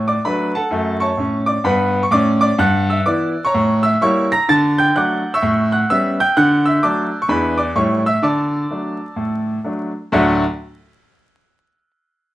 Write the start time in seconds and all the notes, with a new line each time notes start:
Already playing: A2
0.08 D5 D6
0.25 F#3 A3 D4 B4 B5
0.55 A4 F#5 A5
0.71 F#2 A3
1.00 C#5 A5 C#6
1.17 A2 C#4
1.46 D5 D6
1.64 G2 B3 B4 F#5 B5
2.03 C#6
2.11 A2 C#4 D5 D6
2.41 D5 D6
2.58 G2 F#5 F#6
2.90 E5 E6
3.06 E3 B3 E4 D5 D6
3.45 C#5 A#5 C#6
3.54 A2
3.83 E5 E6
4.01 G3 A#3 E4 C#5 C#6
4.32 A#5 A#6
4.49 D3 A5 A6
4.78 G5 G6
4.95 F#3 A3 D4 F#5 D6 F#6
5.34 E5 C#6 E6
5.43 A2
5.72 F#5 F#6
5.90 G3 B3 C#4 E5 E6
6.20 G5 G6
6.37 D3 F#5 F#6
6.65 E5 E6
6.82 F#3 A3 D4 D5 A5 D6
7.22 C#6
7.29 E2 E3 G#3 D4 B4 B5
7.58 D5 D6
7.75 A2 G3 A3 E4 C#5 C#6
8.06 E5 E6
8.22 D3 D5 A5 D6
8.70 F#3 A3 D4
9.16 A2
9.64 F#3 A3 D4
10.12 D2 A2 F#3 A3 D4 F#4